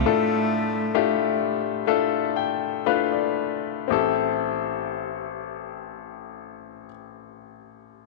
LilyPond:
<<
  \new Staff \with { instrumentName = "Grand piano" } { \time 4/4 \key a \minor \tempo 4 = 58 << { a,4. r4 g''8 f''16 d''8. | a,,1 | } \\ { <a d' e' f' a'>4 <a d' e' f' g'>4 <a d' e' f' a'>4 <a d' e' f' b'>4 | <c' e' g' a'>1 | } >> }
  \new Staff \with { instrumentName = "Cello" } { \time 4/4 \key a \minor a4. r2 r8 | r1 | }
>>